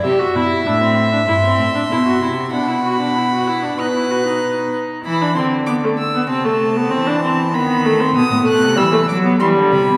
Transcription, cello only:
\new Staff \with { instrumentName = "Cello" } { \clef bass \time 4/4 \key e \minor \tempo 4 = 96 c8 b,8 a,4 g,8 a,8 b,8 c8 | b,2 b,4. r8 | e8 d4. c4 e4 | dis4 b,16 a,16 b,16 c16 e8 fis8 e16 d16 c16 b,16 | }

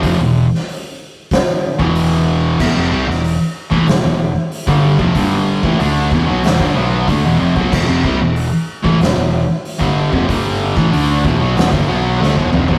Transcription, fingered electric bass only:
\new Staff \with { instrumentName = "Fingered electric bass" } { \clef bass \time 4/4 \key e \minor \tempo 4 = 94 f,,16 e,,8 r2 e,,4~ e,,16 | e,,16 f,,16 c,16 e,,8 r8 a,,16 e,,16 e,,8 r8 g,,8 f,,16 | g,,8. a,,16 d,8 e,,16 b,,16 e,,16 g,,16 b,,8 d,16 e,,16 f,,16 b,,16 | e,,16 f,,16 c,16 e,,8 r8 a,,16 e,,16 e,,8 r8 g,,8 f,,16 |
g,,8. a,,16 d,8 e,,16 b,,16 e,,16 g,,16 b,,8 d,16 e,,16 f,,16 b,,16 | }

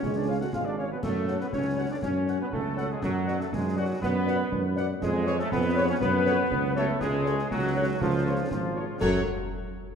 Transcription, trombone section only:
\new Staff \with { instrumentName = "Trombone section" } { \time 2/4 \key fis \minor \tempo 4 = 120 cis'16 d'16 eis'16 fis'16 eis'16 d'16 cis'16 b16 | a8. b16 cis'8. d'16 | cis'8. b16 a8. gis16 | fis8. a16 gis8 fis8 |
b4. r8 | gis8. a16 b8. cis'16 | b4. a8 | gis4 fis4 |
eis4 eis4 | fis8 r4. | }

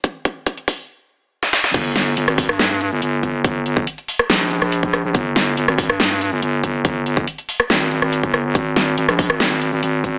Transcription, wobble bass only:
\new Staff \with { instrumentName = "Wobble bass" } { \clef bass \time 4/4 \key g \phrygian \tempo 4 = 141 r1 | g,,4 g,,16 aes,,8 g,4 g,,16 g,,4 | g,,4 r4 bes,,8. bes,,4 bes,,16 | g,,4 g,,16 aes,,8 g,4 g,,16 g,,4 |
g,,4 r4 aes,,8. aes,,8 g,,8. | aes,,4 aes,,16 bes,,8 aes,,4 aes,,16 aes,,4 | }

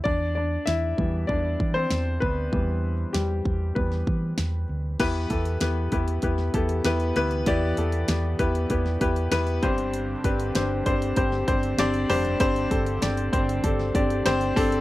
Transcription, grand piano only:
<<
  \new Staff \with { instrumentName = "Grand piano" } { \time 4/4 \key e \phrygian \tempo 4 = 97 <d' d''>8 <d' d''>8 <e' e''>4 <d' d''>8. <c' c''>8. <b b'>8~ | <b b'>4 <g g'>4 b'4. r8 | <b e' g' b'>8 <b e' g' a'>8 <b e' g' b'>8 <b e' g' b'>8 <b e' g' b'>8 <b e' g' a'>8 <b e' g' b'>8 <b e' g' b'>8 | <b e' g' d''>8 <b e' g' a'>8 <b e' g' b'>8 <b e' g' b'>8 <b e' g' b'>8 <b e' g' b'>8 <b e' g' b'>8 <c' d' g' c''>8~ |
<c' d' g' c''>8 <c' d' g' b'>8 <c' d' g' c''>8 <c' d' g' c''>8 <c' d' g' c''>8 <c' d' g' c''>8 <c' d' g' d''>8 <c' d' g' c''>8 | <c' d' g' c''>8 <c' d' g' a'>8 <c' d' g' d''>8 <c' d' g' c''>8 <c' d' g' a'>8 <c' d' g' d''>8 <c' d' g' c''>8 <c' d' g' a'>8 | }
  \new Staff \with { instrumentName = "Grand piano" } { \clef bass \time 4/4 \key e \phrygian r4. <e g b>4. r4 | <e g b>8 r4. <e g b>8 r4. | e4. r2 r8 | e4. r2 g,8~ |
g,4 r2 r8 g,8~ | g,4 r2. | }
>>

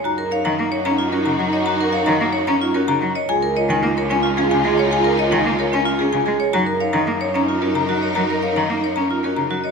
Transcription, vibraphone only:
\new Staff \with { instrumentName = "Vibraphone" } { \time 3/4 \key fis \major \tempo 4 = 111 fis'16 ais'16 cis''16 dis'16 r16 cis''16 cis'16 eis'16 fis'16 r8 cis''16 | fis'16 ais'16 cis''16 dis'16 r16 cis''16 cis'16 eis'16 fis'16 r8 cis''16 | gis'16 ais'16 cis''16 dis'16 r16 cis''16 cis'16 eis'16 gis'16 r16 gis'16 cis''16 | gis'16 ais'16 cis''16 dis'16 r16 cis''16 cis'16 eis'16 gis'16 r16 gis'16 cis''16 |
fis'16 ais'16 cis''16 dis'16 r16 cis''16 cis'16 eis'16 fis'16 r16 fis'16 cis''16 | fis'16 ais'16 cis''16 dis'16 r16 cis''16 cis'16 eis'16 fis'16 r16 fis'16 cis''16 | }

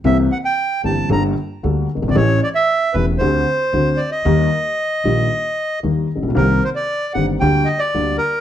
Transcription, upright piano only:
\new Staff \with { instrumentName = "Upright piano" } { \clef bass \time 4/4 \key g \minor \tempo 4 = 114 <c, c e bes c' g'>8 r4 <g,, g, e bes c' g'>8 <g,, g, g bes d' a'>8 r8 <d, d g bes d' a'>8 r32 fis,,32 g,,32 aes,,32 | <a,, a, e a cis' g'>8 r4 <e,, e, e a cis' g'>8 <d, d a c' g'>8 r8 <d, d a c' fis'>8 r8 | <ees, ees g bes g'>8 r4 <bes,, bes, ees g bes g'>8 r4 <ees, ees g bes g'>8 r32 a,,32 bes,,32 b,,32 | <c, c ees bes c' g'>8 r4 <g,, g, ees bes c' g'>8 <d, d g bes g'>8 r8 <d, d g bes g'>8 r8 | }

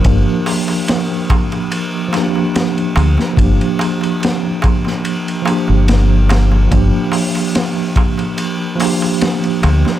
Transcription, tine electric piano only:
\new Staff \with { instrumentName = "Tine electric piano" } { \time 4/4 \key g \minor \tempo 4 = 72 <f bes d' g'>2~ <f bes d' g'>8 <f bes d' g'>4. | <f bes d' g'>2~ <f bes d' g'>8 <f bes d' g'>4. | <f bes d' g'>2~ <f bes d' g'>8 <f bes d' g'>4. | }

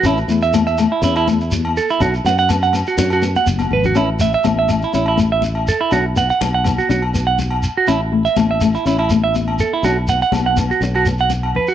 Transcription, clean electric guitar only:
\new Staff \with { instrumentName = "Clean electric guitar" } { \time 4/4 \key a \major \tempo 4 = 123 e'16 r8 e''16 r16 e''16 r16 e'16 e'16 e'16 r4 a'16 e'16 | fis'16 r16 fis''16 fis''16 r16 fis''16 r16 fis'16 fis'16 fis'16 r16 fis''16 r8 b'16 fis'16 | e'16 r16 e''16 e''16 r16 e''16 r16 e'16 e'16 e'16 r16 e''16 r8 a'16 e'16 | fis'16 r16 fis''16 fis''16 r16 fis''16 r16 fis'16 fis'16 r8 fis''16 r8. fis'16 |
e'16 r8 e''16 r16 e''16 r16 e'16 e'16 e'16 r16 e''16 r8 a'16 e'16 | fis'16 r16 fis''16 fis''16 r16 fis''16 r16 fis'16 r16 fis'16 r16 fis''16 r8 b'16 fis'16 | }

